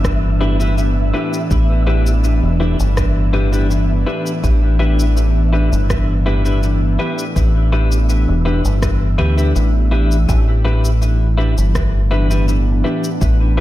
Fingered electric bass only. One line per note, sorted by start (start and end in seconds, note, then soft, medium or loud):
0.00 1.11 G1 medium
1.51 2.39 A1 medium
2.43 2.75 E1 medium
2.80 4.04 G1 medium
4.44 5.69 A1 medium
5.72 6.96 G1 medium
7.36 8.25 A1 loud
8.28 8.60 E1 loud
8.65 9.18 G1 medium
9.19 9.51 D2 medium
9.56 10.26 A1 loud
10.29 11.54 A1 medium
11.58 12.82 G1 medium
13.22 13.60 A1 loud